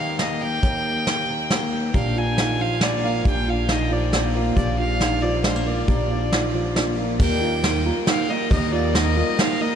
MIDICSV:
0, 0, Header, 1, 8, 480
1, 0, Start_track
1, 0, Key_signature, -3, "major"
1, 0, Tempo, 437956
1, 688, Time_signature, 3, 2, 24, 8
1, 10688, End_track
2, 0, Start_track
2, 0, Title_t, "Fiddle"
2, 0, Program_c, 0, 110
2, 0, Note_on_c, 0, 77, 86
2, 209, Note_off_c, 0, 77, 0
2, 216, Note_on_c, 0, 75, 70
2, 453, Note_on_c, 0, 79, 90
2, 469, Note_off_c, 0, 75, 0
2, 1887, Note_off_c, 0, 79, 0
2, 2141, Note_on_c, 0, 77, 80
2, 2390, Note_on_c, 0, 80, 88
2, 2406, Note_off_c, 0, 77, 0
2, 2861, Note_on_c, 0, 77, 82
2, 2878, Note_off_c, 0, 80, 0
2, 3103, Note_on_c, 0, 74, 71
2, 3119, Note_off_c, 0, 77, 0
2, 3340, Note_on_c, 0, 77, 67
2, 3357, Note_off_c, 0, 74, 0
2, 3571, Note_off_c, 0, 77, 0
2, 3597, Note_on_c, 0, 79, 75
2, 3825, Note_on_c, 0, 77, 70
2, 3841, Note_off_c, 0, 79, 0
2, 4069, Note_on_c, 0, 75, 79
2, 4086, Note_off_c, 0, 77, 0
2, 4297, Note_on_c, 0, 74, 67
2, 4313, Note_off_c, 0, 75, 0
2, 4769, Note_off_c, 0, 74, 0
2, 5001, Note_on_c, 0, 74, 83
2, 5225, Note_off_c, 0, 74, 0
2, 5242, Note_on_c, 0, 77, 89
2, 5721, Note_on_c, 0, 74, 85
2, 5737, Note_off_c, 0, 77, 0
2, 5961, Note_off_c, 0, 74, 0
2, 5967, Note_on_c, 0, 72, 67
2, 6212, Note_on_c, 0, 74, 70
2, 6229, Note_off_c, 0, 72, 0
2, 7648, Note_off_c, 0, 74, 0
2, 7898, Note_on_c, 0, 79, 92
2, 8568, Note_off_c, 0, 79, 0
2, 8872, Note_on_c, 0, 77, 67
2, 9100, Note_on_c, 0, 75, 74
2, 9117, Note_off_c, 0, 77, 0
2, 9328, Note_off_c, 0, 75, 0
2, 9334, Note_on_c, 0, 75, 82
2, 9554, Note_off_c, 0, 75, 0
2, 9572, Note_on_c, 0, 74, 73
2, 9805, Note_on_c, 0, 75, 84
2, 9821, Note_off_c, 0, 74, 0
2, 10293, Note_on_c, 0, 77, 79
2, 10309, Note_off_c, 0, 75, 0
2, 10532, Note_on_c, 0, 75, 76
2, 10548, Note_off_c, 0, 77, 0
2, 10688, Note_off_c, 0, 75, 0
2, 10688, End_track
3, 0, Start_track
3, 0, Title_t, "Upright piano"
3, 0, Program_c, 1, 0
3, 2128, Note_on_c, 1, 67, 75
3, 2361, Note_off_c, 1, 67, 0
3, 2371, Note_on_c, 1, 65, 62
3, 2602, Note_off_c, 1, 65, 0
3, 2615, Note_on_c, 1, 63, 69
3, 2844, Note_off_c, 1, 63, 0
3, 2857, Note_on_c, 1, 65, 63
3, 3085, Note_off_c, 1, 65, 0
3, 3088, Note_on_c, 1, 62, 65
3, 3320, Note_off_c, 1, 62, 0
3, 3333, Note_on_c, 1, 58, 66
3, 3563, Note_off_c, 1, 58, 0
3, 3574, Note_on_c, 1, 67, 76
3, 3803, Note_off_c, 1, 67, 0
3, 3813, Note_on_c, 1, 65, 62
3, 4043, Note_off_c, 1, 65, 0
3, 4043, Note_on_c, 1, 63, 69
3, 4277, Note_off_c, 1, 63, 0
3, 4285, Note_on_c, 1, 65, 64
3, 4518, Note_off_c, 1, 65, 0
3, 4522, Note_on_c, 1, 62, 70
3, 4757, Note_off_c, 1, 62, 0
3, 4765, Note_on_c, 1, 58, 66
3, 4999, Note_off_c, 1, 58, 0
3, 5003, Note_on_c, 1, 67, 73
3, 5238, Note_off_c, 1, 67, 0
3, 5247, Note_on_c, 1, 65, 66
3, 5480, Note_off_c, 1, 65, 0
3, 5483, Note_on_c, 1, 63, 71
3, 5717, Note_off_c, 1, 63, 0
3, 5727, Note_on_c, 1, 65, 66
3, 5960, Note_off_c, 1, 65, 0
3, 5966, Note_on_c, 1, 62, 70
3, 6199, Note_off_c, 1, 62, 0
3, 6201, Note_on_c, 1, 58, 64
3, 6437, Note_off_c, 1, 58, 0
3, 6445, Note_on_c, 1, 67, 76
3, 6679, Note_off_c, 1, 67, 0
3, 6680, Note_on_c, 1, 65, 61
3, 6916, Note_off_c, 1, 65, 0
3, 6931, Note_on_c, 1, 63, 62
3, 7162, Note_off_c, 1, 63, 0
3, 7166, Note_on_c, 1, 65, 60
3, 7400, Note_off_c, 1, 65, 0
3, 7407, Note_on_c, 1, 62, 67
3, 7640, Note_off_c, 1, 62, 0
3, 7649, Note_on_c, 1, 58, 63
3, 7882, Note_off_c, 1, 58, 0
3, 7885, Note_on_c, 1, 67, 82
3, 8119, Note_off_c, 1, 67, 0
3, 8126, Note_on_c, 1, 65, 71
3, 8360, Note_off_c, 1, 65, 0
3, 8368, Note_on_c, 1, 63, 75
3, 8601, Note_off_c, 1, 63, 0
3, 8609, Note_on_c, 1, 65, 70
3, 8842, Note_off_c, 1, 65, 0
3, 8849, Note_on_c, 1, 63, 75
3, 9082, Note_off_c, 1, 63, 0
3, 9086, Note_on_c, 1, 58, 73
3, 9321, Note_off_c, 1, 58, 0
3, 9322, Note_on_c, 1, 67, 83
3, 9559, Note_off_c, 1, 67, 0
3, 9566, Note_on_c, 1, 65, 73
3, 9801, Note_off_c, 1, 65, 0
3, 9805, Note_on_c, 1, 63, 81
3, 10041, Note_off_c, 1, 63, 0
3, 10047, Note_on_c, 1, 65, 72
3, 10283, Note_off_c, 1, 65, 0
3, 10287, Note_on_c, 1, 63, 74
3, 10523, Note_off_c, 1, 63, 0
3, 10529, Note_on_c, 1, 58, 68
3, 10688, Note_off_c, 1, 58, 0
3, 10688, End_track
4, 0, Start_track
4, 0, Title_t, "Twelve-string acoustic guitar"
4, 0, Program_c, 2, 25
4, 7891, Note_on_c, 2, 55, 73
4, 7893, Note_on_c, 2, 51, 75
4, 7897, Note_on_c, 2, 58, 78
4, 7898, Note_on_c, 2, 63, 80
4, 7902, Note_on_c, 2, 70, 84
4, 8343, Note_off_c, 2, 55, 0
4, 8356, Note_on_c, 2, 55, 60
4, 8363, Note_off_c, 2, 63, 0
4, 8364, Note_off_c, 2, 58, 0
4, 8368, Note_on_c, 2, 58, 55
4, 8369, Note_off_c, 2, 51, 0
4, 8376, Note_on_c, 2, 63, 58
4, 8378, Note_off_c, 2, 70, 0
4, 8382, Note_on_c, 2, 70, 59
4, 8598, Note_off_c, 2, 70, 0
4, 8600, Note_off_c, 2, 55, 0
4, 8604, Note_off_c, 2, 63, 0
4, 8606, Note_off_c, 2, 58, 0
4, 8611, Note_on_c, 2, 70, 52
4, 8617, Note_on_c, 2, 63, 43
4, 8633, Note_on_c, 2, 58, 43
4, 8828, Note_off_c, 2, 58, 0
4, 8831, Note_off_c, 2, 63, 0
4, 8831, Note_on_c, 2, 55, 59
4, 8838, Note_off_c, 2, 70, 0
4, 8841, Note_on_c, 2, 58, 52
4, 8844, Note_on_c, 2, 63, 55
4, 8851, Note_on_c, 2, 70, 60
4, 9069, Note_off_c, 2, 70, 0
4, 9078, Note_off_c, 2, 55, 0
4, 9079, Note_off_c, 2, 63, 0
4, 9082, Note_on_c, 2, 70, 39
4, 9083, Note_off_c, 2, 58, 0
4, 9092, Note_on_c, 2, 63, 38
4, 9097, Note_on_c, 2, 58, 38
4, 9310, Note_off_c, 2, 58, 0
4, 9316, Note_on_c, 2, 51, 72
4, 9318, Note_off_c, 2, 63, 0
4, 9320, Note_off_c, 2, 70, 0
4, 9320, Note_on_c, 2, 55, 72
4, 9324, Note_on_c, 2, 58, 68
4, 9331, Note_on_c, 2, 63, 86
4, 9333, Note_on_c, 2, 70, 83
4, 9792, Note_off_c, 2, 55, 0
4, 9802, Note_off_c, 2, 51, 0
4, 9804, Note_off_c, 2, 63, 0
4, 9808, Note_off_c, 2, 58, 0
4, 9813, Note_on_c, 2, 58, 59
4, 9817, Note_on_c, 2, 63, 70
4, 9818, Note_off_c, 2, 70, 0
4, 9822, Note_on_c, 2, 70, 57
4, 10270, Note_on_c, 2, 55, 61
4, 10278, Note_off_c, 2, 58, 0
4, 10281, Note_off_c, 2, 63, 0
4, 10282, Note_on_c, 2, 58, 62
4, 10291, Note_off_c, 2, 70, 0
4, 10294, Note_on_c, 2, 63, 56
4, 10295, Note_on_c, 2, 70, 59
4, 10688, Note_off_c, 2, 55, 0
4, 10688, Note_off_c, 2, 58, 0
4, 10688, Note_off_c, 2, 63, 0
4, 10688, Note_off_c, 2, 70, 0
4, 10688, End_track
5, 0, Start_track
5, 0, Title_t, "Steel-string acoustic guitar"
5, 0, Program_c, 3, 25
5, 0, Note_on_c, 3, 39, 58
5, 0, Note_on_c, 3, 51, 48
5, 0, Note_on_c, 3, 67, 59
5, 220, Note_on_c, 3, 58, 49
5, 443, Note_off_c, 3, 67, 0
5, 457, Note_on_c, 3, 67, 56
5, 664, Note_off_c, 3, 67, 0
5, 670, Note_off_c, 3, 39, 0
5, 683, Note_on_c, 3, 39, 62
5, 695, Note_on_c, 3, 67, 56
5, 1163, Note_off_c, 3, 67, 0
5, 1176, Note_on_c, 3, 67, 60
5, 1400, Note_off_c, 3, 51, 0
5, 1413, Note_on_c, 3, 51, 48
5, 1656, Note_off_c, 3, 58, 0
5, 1661, Note_on_c, 3, 58, 47
5, 1886, Note_off_c, 3, 67, 0
5, 1899, Note_on_c, 3, 67, 52
5, 2103, Note_off_c, 3, 67, 0
5, 2122, Note_off_c, 3, 39, 0
5, 2127, Note_on_c, 3, 46, 58
5, 2128, Note_off_c, 3, 51, 0
5, 2133, Note_on_c, 3, 62, 51
5, 2617, Note_on_c, 3, 65, 58
5, 2847, Note_on_c, 3, 53, 47
5, 3097, Note_off_c, 3, 58, 0
5, 3101, Note_on_c, 3, 58, 48
5, 3328, Note_off_c, 3, 65, 0
5, 3332, Note_on_c, 3, 65, 52
5, 3554, Note_off_c, 3, 46, 0
5, 3559, Note_on_c, 3, 46, 60
5, 3563, Note_off_c, 3, 62, 0
5, 3567, Note_on_c, 3, 62, 54
5, 4047, Note_off_c, 3, 65, 0
5, 4051, Note_on_c, 3, 65, 55
5, 4278, Note_off_c, 3, 53, 0
5, 4282, Note_on_c, 3, 53, 49
5, 4536, Note_off_c, 3, 58, 0
5, 4541, Note_on_c, 3, 58, 51
5, 4776, Note_off_c, 3, 65, 0
5, 4780, Note_on_c, 3, 65, 58
5, 5013, Note_off_c, 3, 46, 0
5, 5018, Note_on_c, 3, 46, 58
5, 5020, Note_off_c, 3, 62, 0
5, 5025, Note_on_c, 3, 62, 50
5, 5501, Note_off_c, 3, 65, 0
5, 5505, Note_on_c, 3, 65, 58
5, 5727, Note_off_c, 3, 53, 0
5, 5731, Note_on_c, 3, 53, 54
5, 5970, Note_off_c, 3, 58, 0
5, 5974, Note_on_c, 3, 56, 49
5, 6091, Note_off_c, 3, 56, 0
5, 6091, Note_on_c, 3, 58, 41
5, 6208, Note_off_c, 3, 65, 0
5, 6222, Note_on_c, 3, 65, 57
5, 6418, Note_off_c, 3, 53, 0
5, 6423, Note_off_c, 3, 65, 0
5, 6425, Note_off_c, 3, 62, 0
5, 6434, Note_off_c, 3, 46, 0
5, 6447, Note_off_c, 3, 58, 0
5, 6447, Note_on_c, 3, 46, 66
5, 6456, Note_on_c, 3, 62, 50
5, 6931, Note_on_c, 3, 65, 54
5, 7166, Note_on_c, 3, 53, 51
5, 7411, Note_on_c, 3, 58, 50
5, 7647, Note_off_c, 3, 65, 0
5, 7659, Note_on_c, 3, 65, 57
5, 7856, Note_off_c, 3, 53, 0
5, 7858, Note_off_c, 3, 58, 0
5, 7862, Note_off_c, 3, 62, 0
5, 7862, Note_off_c, 3, 65, 0
5, 7886, Note_off_c, 3, 46, 0
5, 10688, End_track
6, 0, Start_track
6, 0, Title_t, "Upright piano"
6, 0, Program_c, 4, 0
6, 7883, Note_on_c, 4, 55, 71
6, 7886, Note_on_c, 4, 58, 66
6, 7886, Note_on_c, 4, 63, 65
6, 7889, Note_on_c, 4, 39, 59
6, 7889, Note_on_c, 4, 51, 58
6, 7896, Note_on_c, 4, 70, 85
6, 8031, Note_off_c, 4, 55, 0
6, 8032, Note_off_c, 4, 58, 0
6, 8032, Note_off_c, 4, 63, 0
6, 8037, Note_off_c, 4, 70, 0
6, 8106, Note_on_c, 4, 55, 58
6, 8109, Control_c, 4, 64, 127
6, 8115, Note_on_c, 4, 63, 54
6, 8117, Note_on_c, 4, 58, 54
6, 8120, Note_on_c, 4, 70, 67
6, 8263, Note_off_c, 4, 55, 0
6, 8267, Note_off_c, 4, 63, 0
6, 8268, Note_off_c, 4, 58, 0
6, 8269, Note_off_c, 4, 70, 0
6, 8362, Note_on_c, 4, 55, 55
6, 8370, Note_on_c, 4, 58, 56
6, 8375, Note_on_c, 4, 63, 57
6, 8376, Note_on_c, 4, 70, 67
6, 8511, Note_off_c, 4, 55, 0
6, 8515, Note_off_c, 4, 58, 0
6, 8517, Note_off_c, 4, 63, 0
6, 8517, Note_off_c, 4, 70, 0
6, 8604, Note_on_c, 4, 55, 69
6, 8609, Note_on_c, 4, 58, 73
6, 8616, Note_on_c, 4, 70, 85
6, 8617, Note_on_c, 4, 63, 70
6, 8752, Note_off_c, 4, 55, 0
6, 8754, Note_off_c, 4, 58, 0
6, 8758, Note_off_c, 4, 63, 0
6, 8758, Note_off_c, 4, 70, 0
6, 8846, Note_on_c, 4, 55, 64
6, 8848, Note_on_c, 4, 58, 57
6, 8852, Note_on_c, 4, 63, 60
6, 8860, Note_on_c, 4, 70, 73
6, 8993, Note_off_c, 4, 55, 0
6, 8994, Note_off_c, 4, 58, 0
6, 8996, Note_off_c, 4, 63, 0
6, 9000, Note_off_c, 4, 70, 0
6, 9077, Note_on_c, 4, 55, 62
6, 9085, Note_on_c, 4, 58, 53
6, 9090, Note_on_c, 4, 63, 56
6, 9093, Note_on_c, 4, 70, 68
6, 9229, Note_off_c, 4, 55, 0
6, 9233, Note_off_c, 4, 58, 0
6, 9235, Note_off_c, 4, 63, 0
6, 9237, Note_off_c, 4, 70, 0
6, 9284, Note_off_c, 4, 39, 0
6, 9284, Note_off_c, 4, 51, 0
6, 9317, Note_on_c, 4, 55, 74
6, 9322, Note_on_c, 4, 58, 70
6, 9323, Note_on_c, 4, 39, 62
6, 9326, Note_on_c, 4, 51, 62
6, 9329, Note_on_c, 4, 63, 69
6, 9332, Note_on_c, 4, 70, 82
6, 9469, Note_off_c, 4, 55, 0
6, 9472, Note_off_c, 4, 58, 0
6, 9475, Note_off_c, 4, 63, 0
6, 9477, Note_off_c, 4, 70, 0
6, 9564, Note_on_c, 4, 55, 61
6, 9566, Note_on_c, 4, 58, 53
6, 9571, Note_on_c, 4, 63, 54
6, 9574, Note_on_c, 4, 70, 65
6, 9713, Note_off_c, 4, 55, 0
6, 9714, Note_off_c, 4, 58, 0
6, 9716, Note_off_c, 4, 63, 0
6, 9718, Note_off_c, 4, 70, 0
6, 9803, Note_on_c, 4, 55, 62
6, 9808, Note_on_c, 4, 58, 59
6, 9814, Note_on_c, 4, 63, 56
6, 9820, Note_on_c, 4, 67, 63
6, 9953, Note_off_c, 4, 55, 0
6, 9955, Note_off_c, 4, 58, 0
6, 9958, Note_off_c, 4, 63, 0
6, 9961, Note_off_c, 4, 67, 0
6, 10048, Note_on_c, 4, 55, 67
6, 10050, Note_on_c, 4, 58, 63
6, 10053, Note_on_c, 4, 63, 61
6, 10060, Note_on_c, 4, 70, 76
6, 10196, Note_off_c, 4, 55, 0
6, 10196, Note_off_c, 4, 58, 0
6, 10198, Note_off_c, 4, 63, 0
6, 10201, Note_off_c, 4, 70, 0
6, 10276, Note_on_c, 4, 55, 64
6, 10280, Note_on_c, 4, 58, 63
6, 10289, Note_on_c, 4, 70, 76
6, 10290, Note_on_c, 4, 63, 61
6, 10430, Note_off_c, 4, 55, 0
6, 10432, Note_off_c, 4, 58, 0
6, 10436, Note_off_c, 4, 70, 0
6, 10437, Note_off_c, 4, 63, 0
6, 10521, Note_on_c, 4, 55, 59
6, 10523, Note_on_c, 4, 58, 54
6, 10529, Note_on_c, 4, 63, 55
6, 10538, Note_on_c, 4, 70, 72
6, 10673, Note_off_c, 4, 55, 0
6, 10674, Note_off_c, 4, 58, 0
6, 10677, Note_off_c, 4, 63, 0
6, 10681, Note_off_c, 4, 70, 0
6, 10688, Note_off_c, 4, 39, 0
6, 10688, Note_off_c, 4, 51, 0
6, 10688, End_track
7, 0, Start_track
7, 0, Title_t, "Upright bass"
7, 0, Program_c, 5, 32
7, 2131, Note_on_c, 5, 34, 64
7, 3537, Note_off_c, 5, 34, 0
7, 3567, Note_on_c, 5, 34, 66
7, 4975, Note_off_c, 5, 34, 0
7, 5007, Note_on_c, 5, 34, 72
7, 6416, Note_off_c, 5, 34, 0
7, 6443, Note_on_c, 5, 34, 67
7, 7855, Note_off_c, 5, 34, 0
7, 7887, Note_on_c, 5, 39, 98
7, 8652, Note_off_c, 5, 39, 0
7, 9326, Note_on_c, 5, 39, 105
7, 10093, Note_off_c, 5, 39, 0
7, 10688, End_track
8, 0, Start_track
8, 0, Title_t, "Drums"
8, 208, Note_on_c, 9, 38, 68
8, 208, Note_on_c, 9, 42, 48
8, 318, Note_off_c, 9, 38, 0
8, 318, Note_off_c, 9, 42, 0
8, 687, Note_on_c, 9, 42, 56
8, 692, Note_on_c, 9, 36, 90
8, 797, Note_off_c, 9, 42, 0
8, 801, Note_off_c, 9, 36, 0
8, 1172, Note_on_c, 9, 38, 69
8, 1172, Note_on_c, 9, 42, 50
8, 1281, Note_off_c, 9, 38, 0
8, 1281, Note_off_c, 9, 42, 0
8, 1649, Note_on_c, 9, 38, 68
8, 1649, Note_on_c, 9, 42, 53
8, 1758, Note_off_c, 9, 38, 0
8, 1758, Note_off_c, 9, 42, 0
8, 2129, Note_on_c, 9, 42, 51
8, 2130, Note_on_c, 9, 36, 92
8, 2239, Note_off_c, 9, 36, 0
8, 2239, Note_off_c, 9, 42, 0
8, 2606, Note_on_c, 9, 38, 65
8, 2606, Note_on_c, 9, 42, 47
8, 2715, Note_off_c, 9, 38, 0
8, 2715, Note_off_c, 9, 42, 0
8, 3079, Note_on_c, 9, 38, 73
8, 3079, Note_on_c, 9, 42, 47
8, 3189, Note_off_c, 9, 38, 0
8, 3189, Note_off_c, 9, 42, 0
8, 3566, Note_on_c, 9, 36, 94
8, 3568, Note_on_c, 9, 42, 51
8, 3676, Note_off_c, 9, 36, 0
8, 3678, Note_off_c, 9, 42, 0
8, 4040, Note_on_c, 9, 38, 63
8, 4040, Note_on_c, 9, 42, 51
8, 4150, Note_off_c, 9, 38, 0
8, 4150, Note_off_c, 9, 42, 0
8, 4525, Note_on_c, 9, 38, 66
8, 4525, Note_on_c, 9, 42, 54
8, 4635, Note_off_c, 9, 38, 0
8, 4635, Note_off_c, 9, 42, 0
8, 5006, Note_on_c, 9, 36, 91
8, 5006, Note_on_c, 9, 42, 57
8, 5115, Note_off_c, 9, 36, 0
8, 5116, Note_off_c, 9, 42, 0
8, 5486, Note_on_c, 9, 38, 67
8, 5486, Note_on_c, 9, 42, 46
8, 5596, Note_off_c, 9, 38, 0
8, 5596, Note_off_c, 9, 42, 0
8, 5962, Note_on_c, 9, 38, 75
8, 5962, Note_on_c, 9, 42, 48
8, 6071, Note_off_c, 9, 38, 0
8, 6071, Note_off_c, 9, 42, 0
8, 6445, Note_on_c, 9, 42, 55
8, 6447, Note_on_c, 9, 36, 99
8, 6555, Note_off_c, 9, 42, 0
8, 6557, Note_off_c, 9, 36, 0
8, 6931, Note_on_c, 9, 38, 67
8, 6931, Note_on_c, 9, 42, 50
8, 7040, Note_off_c, 9, 38, 0
8, 7040, Note_off_c, 9, 42, 0
8, 7411, Note_on_c, 9, 38, 68
8, 7411, Note_on_c, 9, 42, 51
8, 7521, Note_off_c, 9, 38, 0
8, 7521, Note_off_c, 9, 42, 0
8, 7889, Note_on_c, 9, 36, 109
8, 7889, Note_on_c, 9, 49, 90
8, 7999, Note_off_c, 9, 36, 0
8, 7999, Note_off_c, 9, 49, 0
8, 8369, Note_on_c, 9, 38, 74
8, 8369, Note_on_c, 9, 51, 57
8, 8479, Note_off_c, 9, 38, 0
8, 8479, Note_off_c, 9, 51, 0
8, 8846, Note_on_c, 9, 38, 80
8, 8846, Note_on_c, 9, 51, 57
8, 8955, Note_off_c, 9, 38, 0
8, 8955, Note_off_c, 9, 51, 0
8, 9327, Note_on_c, 9, 36, 109
8, 9327, Note_on_c, 9, 51, 56
8, 9436, Note_off_c, 9, 51, 0
8, 9437, Note_off_c, 9, 36, 0
8, 9808, Note_on_c, 9, 38, 78
8, 9808, Note_on_c, 9, 51, 52
8, 9918, Note_off_c, 9, 38, 0
8, 9918, Note_off_c, 9, 51, 0
8, 10289, Note_on_c, 9, 38, 79
8, 10289, Note_on_c, 9, 51, 49
8, 10399, Note_off_c, 9, 38, 0
8, 10399, Note_off_c, 9, 51, 0
8, 10688, End_track
0, 0, End_of_file